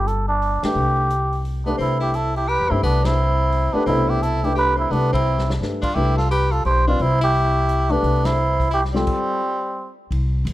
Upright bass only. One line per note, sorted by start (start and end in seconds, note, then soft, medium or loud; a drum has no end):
0.00 0.59 G1 medium
0.63 muted upright bass stroke soft
0.75 1.75 C2 medium
1.79 2.56 C2 medium
2.60 2.70 E2 medium
2.71 2.82 G2 medium
2.82 3.70 C2 medium
3.74 muted upright bass stroke soft
3.87 4.87 C2 medium
4.91 5.56 C2 medium
5.61 5.93 G2 medium
5.96 6.61 C2 medium
6.65 6.97 B1 medium
7.00 8.00 C2 medium
8.03 9.03 C2 medium
10.11 10.44 C2 medium
10.45 10.53 E2 medium